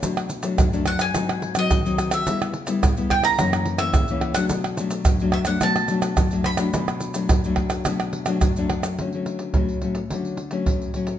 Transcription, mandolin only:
X:1
M:4/4
L:1/16
Q:1/4=107
K:Bm
V:1 name="Mandolin"
z6 f ^g4 ^d4 e- | e z4 z g ^a4 e4 f- | f z4 z e f a6 b2- | b12 z4 |
[K:D] z16 |]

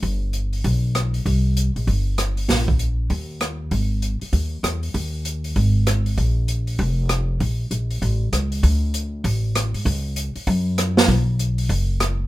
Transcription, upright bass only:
X:1
M:4/4
L:1/8
Q:"Swing" 1/4=195
K:Dphr
V:1 name="Upright bass" clef=bass
G,,,4 =B,,,4 | C,,3 B,,, G,,,4 | B,,,4 E,,4 | _A,,,3 z E,,2 =E,,2 |
E,,4 _A,,,4 | B,,,4 F,,,4 | B,,,2 B,,,2 A,,,2 ^C,,2 | D,,4 A,,,3 _A,, |
_D,,3 z _G,,4 | =B,,,4 ^F,,,4 |]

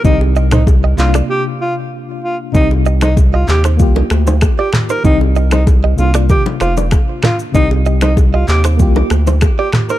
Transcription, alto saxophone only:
X:1
M:4/4
L:1/16
Q:1/4=96
K:Cm
V:1 name="Alto saxophone"
E z2 E z2 F z G z F z3 F z | E z2 E z F G z6 G z B | E z2 E z2 F z G z F z3 F z | E z2 E z F G z6 G z B |]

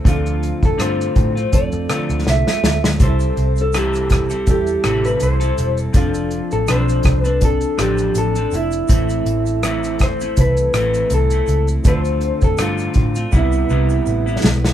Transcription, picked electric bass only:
X:1
M:4/4
L:1/16
Q:"Swing 16ths" 1/4=81
K:C
V:1 name="Picked electric bass" clef=bass
D,,3 F,, G,,2 A,,2 F,, F,, z D,, C,, z D,, D,, | C,,2 C,,6 E,,2 A,,,2 C,,2 E,,,2 | F,,,3 A,,, B,,,2 C,,4 A,,,2 A,,,2 F,,,2 | A,,,2 A,,,6 C,,2 A,,,2 C,,2 _D,,2 |
D,,3 F,, G,,2 A,,2 C,,2 C,,2 A,,,2 B,,,2 |]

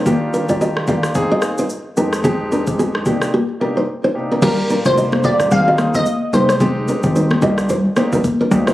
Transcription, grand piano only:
X:1
M:4/4
L:1/16
Q:"Swing 16ths" 1/4=110
K:Eb
V:1 name="Grand piano"
[E,B,DFG]3 [E,B,DFG]3 [E,B,DFG]2 [B,CEA]2 [B,CEA] z3 [F,,A,CEG]2 | [F,,A,CEG]3 [F,,A,CEG]3 [C,B,DEG]2 z2 [C,B,DEG] z3 [C,B,DEG]2 | [B,DFG]3 [B,DFG]3 [B,DFG]2 [B,CEA]2 [B,CEA] z3 [A,CEG]2 | [A,CEG]3 [A,CEG]3 [B,DEG]2 z2 [B,DEG] z3 [B,DEG]2 |]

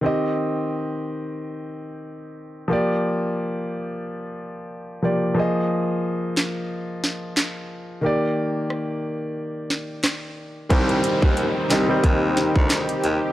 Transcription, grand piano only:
X:1
M:4/4
L:1/16
Q:"Swing 16ths" 1/4=90
K:Cm
V:1 name="Grand piano"
[E,CGe]16 | [F,B,Gd]12- [F,B,Gd]2 [F,B,Gd]2 | [F,B,Ae]16 | [E,B,Gd]16 |
[E,G,CGc]4 z2 [E,G,CGe] [E,G,CGc]4- [E,G,CGc] z4 |]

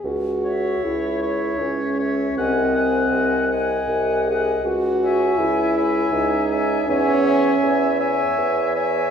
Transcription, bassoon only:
X:1
M:3/4
L:1/8
Q:1/4=80
K:C#m
V:1 name="Bassoon" clef=bass
C,,2 C,,2 C,,2 | ^B,,,2 B,,,2 B,,,2 | C,,2 C,,2 C,,2 | E,,2 E,,2 E,,2 |]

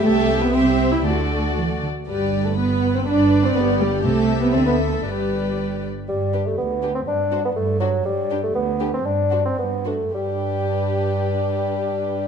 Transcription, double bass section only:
X:1
M:2/4
L:1/8
Q:1/4=119
K:G
V:1 name="Double bass section" clef=bass
C,,4 | D,,3 z | G,,,4 | G,,,2 G,,,2 |
C,,2 D,,2 | G,,,3 z | z4 | z4 |
z4 | z4 | z4 | z4 |]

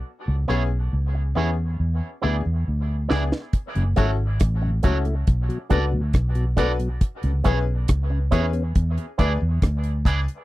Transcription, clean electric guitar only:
X:1
M:4/4
L:1/8
Q:1/4=69
K:F#m
V:1 name="Clean electric guitar"
z [B,EGc] z [B,EGc] z [B,EGd] z [B,EGd] | z [A,EFc] z [A,EFc] z [DFAd] z [DFAd] | z [B,EGc] z [B,EGc] z [B,EGd] z [B,EGd] |]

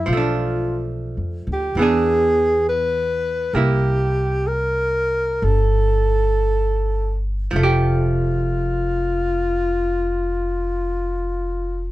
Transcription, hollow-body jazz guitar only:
X:1
M:4/4
L:1/8
Q:"Swing" 1/4=61
K:F
V:1 name="Hollow-body jazz guitar"
[F,A,D]4 [E,=B,D^G]4 | [B,E]8 | [F,A,G]8 |]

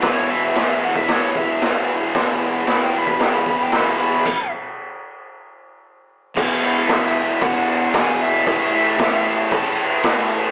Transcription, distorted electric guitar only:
X:1
M:4/4
L:1/8
Q:1/4=114
K:A
V:1 name="Distorted electric guitar" clef=bass
[E,,B,,E,] [B,,E,] [E,,B,,E,] [E,,B,,E,] [E,,B,,E,] [E,,B,,E,] [E,,B,,E,] [B,,E,] | [E,,B,,E,] [B,,E,] [E,,B,,E,] [E,,B,,E,] [E,,B,,E,] [E,,B,,E,] [E,,B,,E,] [B,,E,] | z8 | [E,,B,,E,] [B,,E,] [E,,B,,E,] [B,,E,] [E,,B,,E,]2 [E,,B,,E,] [B,,E,] |
[A,,E,A,] [E,A,] [A,,E,A,] [E,A,] [A,,E,A,]2 [A,,E,A,] [E,A,] |]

